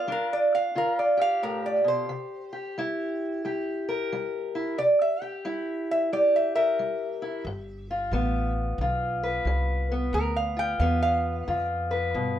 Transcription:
Already playing: steel-string acoustic guitar F4
0.08 steel-string acoustic guitar G3 D4
0.12 resonator guitar played with a steel bar A#4
0.33 resonator guitar played with a steel bar D5
0.55 resonator guitar played with a steel bar F5
0.75 steel-string acoustic guitar D3 F4, resonator guitar played with a steel bar A#4
0.99 resonator guitar played with a steel bar D5
1.17 steel-string acoustic guitar G4
1.21 resonator guitar played with a steel bar F5
1.43 steel-string acoustic guitar A2, resonator guitar played with a steel bar A#4
1.66 resonator guitar played with a steel bar D5
1.84 steel-string acoustic guitar B2, resonator guitar played with a steel bar C5
2.09 steel-string acoustic guitar C3
2.53 steel-string acoustic guitar G4
2.78 steel-string acoustic guitar G3 E4
3.45 steel-string acoustic guitar G3 G4
3.89 steel-string acoustic guitar A#4
4.13 steel-string acoustic guitar G3
4.55 steel-string acoustic guitar E4
4.78 steel-string acoustic guitar C3, resonator guitar played with a steel bar D5
5.01 resonator guitar played with a steel bar E5
5.22 steel-string acoustic guitar G4, resonator guitar played with a steel bar G5
5.45 steel-string acoustic guitar G3 E4
5.91 resonator guitar played with a steel bar E5
6.13 steel-string acoustic guitar G3 G4, resonator guitar played with a steel bar D5
6.36 resonator guitar played with a steel bar E5
6.55 steel-string acoustic guitar A#4, resonator guitar played with a steel bar E5
6.79 steel-string acoustic guitar G3
7.22 steel-string acoustic guitar E4
7.45 upright bass G1, steel-string acoustic guitar G2
7.91 steel-string acoustic guitar F4
8.12 upright bass A1, steel-string acoustic guitar G3 B3
8.78 upright bass B1, steel-string acoustic guitar D3 F4
9.23 steel-string acoustic guitar B4
9.45 upright bass C2, steel-string acoustic guitar G3
9.92 steel-string acoustic guitar B3
10.13 upright bass D2, steel-string acoustic guitar G2, resonator guitar played with a steel bar A#4
10.36 resonator guitar played with a steel bar F5
10.57 steel-string acoustic guitar F4, resonator guitar played with a steel bar G5
10.80 upright bass E2, steel-string acoustic guitar G3 B3, resonator guitar played with a steel bar F5
11.03 resonator guitar played with a steel bar F5
11.48 upright bass F2, steel-string acoustic guitar D3 F4
11.91 steel-string acoustic guitar B4
12.14 upright bass G2, steel-string acoustic guitar B2

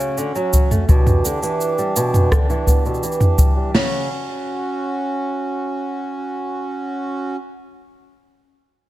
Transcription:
Already playing: nylon-string guitar C#3, harmonium C#4 F#4
0.00 shaker
0.17 nylon-string guitar D3, shaker
0.35 nylon-string guitar F#3, shaker
0.53 kick, shaker
0.71 nylon-string guitar A3, mid tom, shaker
0.88 nylon-string guitar B2, harmonium E3 D4 G4, kick, shaker
1.07 mid tom, shaker
1.25 nylon-string guitar D3, shaker
1.43 nylon-string guitar E3, shaker
1.61 shaker
1.78 nylon-string guitar G3, shaker
1.96 nylon-string guitar B2, shaker
2.14 mid tom, shaker
2.32 nylon-string guitar D3, kick, cross-stick, shaker
2.50 nylon-string guitar E3, shaker
2.67 nylon-string guitar B3, kick, shaker
2.85 nylon-string guitar B2, shaker
2.94 shaker
3.03 nylon-string guitar E3, shaker
3.12 shaker
3.20 mid tom, shaker
3.38 nylon-string guitar G3, kick, shaker
3.57 nylon-string guitar G3
3.75 nylon-string guitar C#3, harmonium C#4 F#4, snare, open hi-hat

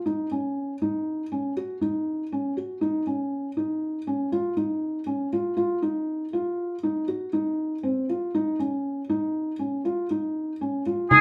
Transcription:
0.06 felt piano D#4
0.31 felt piano C#4
0.82 felt piano D#4
1.32 felt piano C#4
1.57 felt piano F#4
1.81 felt piano D#4
2.32 felt piano C#4
2.57 felt piano F#4
2.81 felt piano D#4
3.07 felt piano C#4
3.57 felt piano D#4
4.07 felt piano C#4
4.32 felt piano F4
4.57 felt piano D#4
5.06 felt piano C#4
5.33 felt piano F4
5.57 felt piano F4
5.82 felt piano D#4
6.33 felt piano F4
6.83 felt piano D#4
7.08 felt piano F#4
7.33 felt piano D#4
7.83 felt piano C4
8.09 felt piano F4
8.34 felt piano D#4
8.59 felt piano C#4
9.10 felt piano D#4
9.59 felt piano C#4
9.85 felt piano F4
10.11 felt piano D#4
10.61 felt piano C#4
10.86 felt piano F4
11.11 felt piano D#4, oboe G#4, frame drum

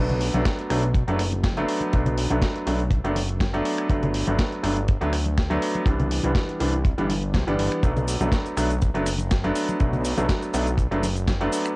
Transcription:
Already playing: analog synth bass B1, grand piano F#3 A3 B3 D4
0.09 closed hi-hat, low conga
0.21 open hi-hat
0.34 analog synth bass B1, grand piano F#3 A3 B3 D4, closed hi-hat, high conga
0.45 kick, snare, closed hi-hat
0.59 closed hi-hat
0.70 analog synth bass B1, grand piano F#3 A3 B3 D4, finger snap, open hi-hat
0.83 closed hi-hat
0.94 kick, closed hi-hat
1.08 analog synth bass F#1, grand piano F#3 A3 B3 D4, closed hi-hat
1.19 finger snap, open hi-hat
1.32 closed hi-hat, high conga
1.44 kick, snare, closed hi-hat
1.57 grand piano F#3 A3 B3 D4, closed hi-hat, high conga
1.68 open hi-hat
1.81 closed hi-hat, high conga
1.93 analog synth bass B1, grand piano F#3 A3 B3 D4, kick, closed hi-hat
2.06 closed hi-hat, low conga
2.18 open hi-hat
2.30 analog synth bass B1, grand piano F#3 A3 B3 D4, high conga
2.42 kick, snare, closed hi-hat
2.56 closed hi-hat
2.66 analog synth bass B1, grand piano F#3 A3 B3 D4, open hi-hat
2.80 closed hi-hat
2.91 kick, closed hi-hat
3.04 analog synth bass F#1, grand piano F#3 A3 B3 D4, closed hi-hat
3.16 open hi-hat, high conga
3.29 closed hi-hat
3.40 kick, snare, closed hi-hat, high conga
3.53 grand piano F#3 A3 B3 D4, closed hi-hat
3.65 open hi-hat
3.78 finger snap, closed hi-hat
3.89 analog synth bass G1, grand piano F#3 A3 B3 D4, kick, closed hi-hat
4.03 closed hi-hat, low conga
4.14 open hi-hat
4.27 analog synth bass G1, grand piano F#3 A3 B3 D4, closed hi-hat, high conga
4.39 kick, snare, closed hi-hat
4.52 closed hi-hat
4.63 analog synth bass G1, grand piano F#3 A3 B3 D4, finger snap, open hi-hat
4.77 closed hi-hat
4.88 kick, closed hi-hat
5.01 analog synth bass D2, grand piano F#3 A3 B3 D4, closed hi-hat
5.13 finger snap, open hi-hat
5.26 closed hi-hat, high conga
5.38 kick, snare, closed hi-hat
5.50 grand piano F#3 A3 B3 D4, closed hi-hat, high conga
5.62 open hi-hat
5.75 closed hi-hat, high conga
5.86 analog synth bass C2, grand piano E3 G3 B3 D4, kick, closed hi-hat
6.00 closed hi-hat, low conga
6.11 open hi-hat
6.23 analog synth bass C2, grand piano E3 G3 B3 D4, closed hi-hat, high conga
6.35 kick, snare, closed hi-hat
6.49 closed hi-hat
6.60 analog synth bass C2, grand piano E3 G3 B3 D4, open hi-hat
6.85 kick, closed hi-hat
6.98 analog synth bass G1, grand piano E3 G3 B3 D4, closed hi-hat
7.10 open hi-hat, high conga
7.23 closed hi-hat
7.34 analog synth bass C2, kick, snare, closed hi-hat, high conga
7.47 analog synth bass G1, grand piano E3 G3 B3 D4, closed hi-hat
7.59 analog synth bass G1, open hi-hat
7.72 finger snap, closed hi-hat
7.83 analog synth bass B1, grand piano F#3 A3 B3 D4, kick, closed hi-hat, cabasa
7.97 closed hi-hat, low conga, cabasa
8.08 open hi-hat, cabasa
8.21 analog synth bass B1, grand piano F#3 A3 B3 D4, closed hi-hat, high conga, cabasa
8.32 kick, snare, closed hi-hat, cabasa
8.46 closed hi-hat, cabasa
8.57 analog synth bass B1, grand piano F#3 A3 B3 D4, finger snap, open hi-hat, cabasa
8.71 closed hi-hat, cabasa
8.82 kick, closed hi-hat, cabasa
8.94 analog synth bass F#1, grand piano F#3 A3 B3 D4, closed hi-hat
9.06 finger snap, open hi-hat, cabasa
9.18 closed hi-hat, high conga, cabasa
9.31 kick, snare, closed hi-hat, cabasa
9.44 grand piano F#3 A3 B3 D4, closed hi-hat, high conga
9.55 open hi-hat, cabasa
9.69 closed hi-hat, high conga, cabasa
9.80 analog synth bass B1, grand piano F#3 A3 B3 D4, kick, closed hi-hat, cabasa
9.93 closed hi-hat, low conga, cabasa
10.05 open hi-hat, cabasa
10.17 analog synth bass B1, grand piano F#3 A3 B3 D4, high conga, cabasa
10.29 kick, snare, closed hi-hat, cabasa
10.42 closed hi-hat, cabasa
10.53 analog synth bass B1, grand piano F#3 A3 B3 D4, open hi-hat, cabasa
10.67 closed hi-hat, cabasa
10.78 kick, closed hi-hat, cabasa
10.91 analog synth bass F#1, grand piano F#3 A3 B3 D4, closed hi-hat
11.03 open hi-hat, high conga, cabasa
11.17 closed hi-hat, cabasa
11.28 kick, snare, closed hi-hat, high conga, cabasa
11.40 grand piano F#3 A3 B3 D4, closed hi-hat
11.52 open hi-hat, cabasa
11.66 finger snap, closed hi-hat, cabasa

